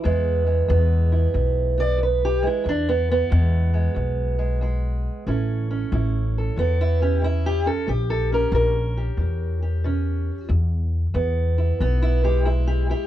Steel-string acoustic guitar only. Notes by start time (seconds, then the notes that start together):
Already playing: E3
0.04 E2 G#3 B3 E4
0.47 G#3
0.68 E2 B3
1.12 E4
1.34 E2
1.78 B3 D5
1.98 E2
2.03 B4
2.25 G4
2.43 G#3
2.47 E4
2.64 E2
2.69 D4
2.89 B3
3.11 B3
3.30 E2 G#3
3.74 G#3
3.95 E2
4.39 G#3
4.61 E2 G#3
5.27 A2 C#4 E4 A4
5.71 C#4
5.93 A2 E4
6.38 A4
6.56 A2 B3
6.81 E4
7.02 C#4 G4
7.22 A2 E4
7.46 G4
7.66 C#4 A4
7.87 A#2 G4
8.10 A4
8.32 C#4 A#4
8.53 A#2 A#4
8.97 G4
9.19 A#2
9.62 G4
9.84 A#2 C#4
10.49 E2
11.14 E2 B3
11.58 E4
11.80 E2 B3
12.02 E4
12.24 G#3 G4
12.45 E2 E4
12.67 G4
12.90 E4 G4